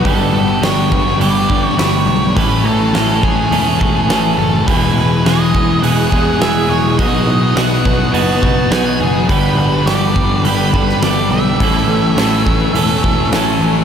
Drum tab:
HH |o---o---o---o---|o---o---o---o---|o---o---o---o---|o---o---o---o---|
SD |----o-------o---|----o-------o---|----o-------o---|----o-------o---|
BD |o-----o---o-----|o-----o---o-----|o-----o---o-----|o-----o---o-----|

HH |o---o---o---o---|o---o---o---o---|
SD |----o------oo---|----o-------o---|
BD |o-----o---o-----|o-----o---o-----|